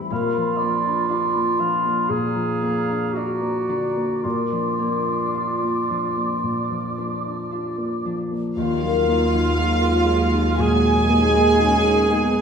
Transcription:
Already playing: grand piano A2 E3 G3 C4 E4, harp E3 G3 C4 E4, flute section B5
0.08 harp A#2, clarinet F4, cor anglais F5
0.12 grand piano A#2
0.37 grand piano F3
0.57 harp D4, cor anglais D5
0.62 grand piano A#3
0.86 grand piano D4
1.09 harp D4, grand piano F4, cor anglais D5
1.35 grand piano A#3
1.58 grand piano F3, harp D4, cor anglais F5
1.85 grand piano A#3
2.09 grand piano A#2, clarinet G#4, cor anglais F5, flute section A#5
2.36 grand piano F3
2.62 grand piano A#3, harp D4
2.89 grand piano D4
3.13 harp D4, clarinet F#4, grand piano F5, flute section A#5
3.17 cor anglais D5
3.41 grand piano A#3
3.69 grand piano D3, harp D4, flute section A#5
3.96 grand piano A#3
4.23 harp A#2, grand piano A#2, clarinet F4, cor anglais D5, flute section D6
4.52 grand piano F3, harp D4
4.79 harp A#3, grand piano A#3
5.06 grand piano D4
5.34 harp D4, grand piano F4
5.63 grand piano A#3
5.90 grand piano F3, harp D4
6.16 grand piano A#3
6.44 grand piano A#2
6.71 grand piano F3
6.98 grand piano A#3, harp D4
7.25 grand piano D4
7.51 harp D4, grand piano F4
7.78 grand piano A#3
8.05 grand piano F3, harp D4
8.32 grand piano A#3
8.56 grand piano D#2, cello section D#2, double bass section D#2, harp D#3, viola section A#3, duduk F4, cor anglais F4, french horn section F4, flute section F5, violin section F5
8.82 grand piano F#3, harp A#4
9.07 grand piano A#3, harp D#4
9.32 harp F#3, grand piano D#4
9.57 grand piano F#3, viola section G#3, harp D#4
9.82 grand piano A#4
10.07 grand piano F#3, harp D#4
10.34 grand piano D#4
10.58 grand piano A#2, harp F#3, viola section F#3, french horn section G#3, duduk G#4, cor anglais G#4, violin section G#5, flute section G#5
10.85 grand piano F#3
11.09 grand piano A#3, viola section A#3, harp D#4
11.35 harp F#3, grand piano D#4
11.60 viola section C#4, harp D#4, grand piano F#4
11.84 grand piano A#4
12.10 viola section B3, harp D#4, grand piano F#4
12.35 grand piano D#4

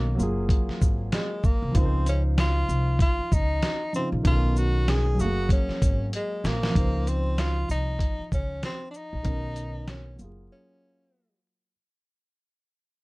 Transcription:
Already playing: upright bass B1, grand piano B2 D#3 C#4 A#4, tenor saxophone A#3
0.15 upright bass F#1, grand piano F#3 A#3
0.19 grand piano F4 G#4, shaker
0.49 kick, closed hi-hat
0.69 muted upright bass stroke, snare
0.82 upright bass G#1, kick, shaker
1.12 tenor saxophone G#3, snare, closed hi-hat
1.44 tenor saxophone A#3, kick, shaker
1.62 upright bass C2
1.71 upright bass C#2, grand piano F3 F4, kick, closed hi-hat
1.76 tenor saxophone C4, grand piano D#4 A#4
1.85 grand piano C5
2.06 tenor saxophone C#4, closed hi-hat, shaker
2.38 tenor saxophone F4, snare, closed hi-hat
2.69 upright bass C2, shaker
2.99 tenor saxophone F4, kick, closed hi-hat
3.19 muted upright bass stroke
3.32 upright bass C#2, tenor saxophone D#4, kick, shaker
3.62 snare, closed hi-hat
3.93 grand piano C#3 F3 D#4 F4, tenor saxophone C4, shaker
4.12 upright bass A#1
4.23 upright bass B1, grand piano D#3 B3 C#4, tenor saxophone F4, kick, closed hi-hat
4.27 grand piano A4
4.34 grand piano A#4
4.56 tenor saxophone F#4, shaker
4.88 tenor saxophone G#4, snare, closed hi-hat
5.15 grand piano F#3 A3
5.19 upright bass F#1, tenor saxophone F#4, grand piano G#4 F5, shaker
5.24 grand piano A#3
5.49 tenor saxophone C#4, kick, closed hi-hat
5.69 muted upright bass stroke, snare
5.82 upright bass G#1, kick, closed hi-hat, shaker
6.13 tenor saxophone G#3, closed hi-hat
6.44 upright bass A#1, tenor saxophone A#3, snare, shaker
6.63 snare
6.71 grand piano F3 F4
6.75 upright bass C#2, grand piano D#4, kick, closed hi-hat
6.79 grand piano C5
7.07 tenor saxophone C4, closed hi-hat, shaker
7.38 tenor saxophone F4, snare, closed hi-hat
7.69 upright bass C2, tenor saxophone D#4, shaker
7.99 kick, closed hi-hat
8.19 muted upright bass stroke
8.32 upright bass C#2, tenor saxophone C#4, kick, shaker
8.63 tenor saxophone C4, snare, closed hi-hat
8.91 tenor saxophone D4, shaker
8.97 tenor saxophone D#4
9.13 upright bass A#1
9.23 upright bass B1, grand piano D#3 B3 C#4, kick, closed hi-hat
9.27 grand piano A#4
9.56 closed hi-hat, shaker
9.88 tenor saxophone C#4, snare, closed hi-hat
10.16 upright bass F#1, grand piano F#3 A#3, shaker
10.21 grand piano F4 G#4
10.52 tenor saxophone C#4

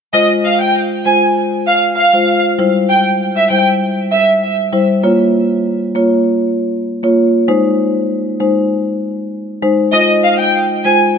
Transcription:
0.14 marimba G#3 F4 C5, violin section D#5
0.44 violin section F5
0.61 violin section G5
1.05 marimba G#3 F4 C5, violin section G#5
1.67 violin section F5
1.97 violin section F5
2.14 marimba G#3 F4 C5
2.58 marimba G3 E4 C5
2.89 violin section G5
3.36 violin section E5
3.50 marimba G3 E4 C5, violin section G5
4.12 violin section E5
4.73 marimba G3 E4 C5
5.03 marimba A#3 F4 C#5
5.95 marimba A#3 F4 C#5
7.03 marimba A#3 F4 C#5
7.48 marimba G#3 D#4 C5
8.40 marimba G#3 D#4 C5
9.62 marimba G#3 D#4 C5
9.93 marimba G#3 F4 C5, violin section D#5
10.24 violin section F5
10.40 violin section G5
10.85 marimba G#3 F4 C5, violin section G#5

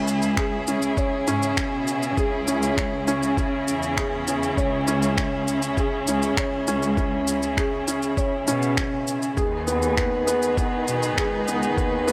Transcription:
Already playing: cello section C#2, string quartet C#3 C#4 E4 G#4, felt piano C#4
0.08 shaker
0.22 shaker
0.37 felt piano G#4, finger snap, kick, shaker
0.67 felt piano C#4, shaker
0.82 shaker
0.97 felt piano C#5, kick, shaker
1.27 cello section G#2, felt piano C#4, shaker
1.43 shaker
1.57 cello section B2, felt piano C#4, finger snap, kick, shaker
1.87 shaker
2.03 shaker
2.17 cello section C#2, felt piano G#4, kick, shaker
2.48 felt piano C#4, shaker
2.63 shaker
2.77 felt piano C#5, finger snap, kick, shaker
3.08 felt piano C#4, shaker
3.23 shaker
3.37 felt piano C#4, kick, shaker
3.68 cello section E2, shaker
3.83 shaker
3.97 felt piano G#4, finger snap, kick, shaker
4.28 felt piano C#4, shaker
4.43 shaker
4.57 cello section C#2, felt piano C#5, kick, shaker
4.88 felt piano C#4, shaker
5.02 shaker
5.17 felt piano C#4, finger snap, kick, shaker
5.48 shaker
5.62 shaker
5.77 felt piano G#4, kick, shaker
6.07 cello section C#2, felt piano C#4, shaker
6.22 shaker
6.37 cello section C#2, felt piano C#5, finger snap, kick, shaker
6.67 felt piano C#4, shaker
6.82 shaker
6.97 felt piano C#4, kick, shaker
7.28 shaker
7.43 shaker
7.57 felt piano G#4, finger snap, kick, shaker
7.88 felt piano C#4, shaker
8.02 shaker
8.17 felt piano C#5, kick, shaker
8.47 cello section B2, felt piano C#4, shaker
8.62 shaker
8.77 felt piano C#4, finger snap, kick, shaker
9.07 shaker
9.22 shaker
9.36 cello section D#2, string quartet D#3 D#4 G#4 B4, felt piano G#4, kick, shaker
9.67 felt piano B3, shaker
9.82 shaker
9.97 felt piano B3, finger snap, kick, shaker
10.27 felt piano B3, shaker
10.43 shaker
10.57 felt piano B3, kick, shaker
10.88 cello section B2, shaker
11.03 shaker
11.17 cello section C#2, felt piano G#4, finger snap, kick, shaker
11.48 felt piano B3, shaker
11.63 shaker
11.77 cello section D#2, felt piano B3, kick, shaker
12.07 felt piano B3, shaker

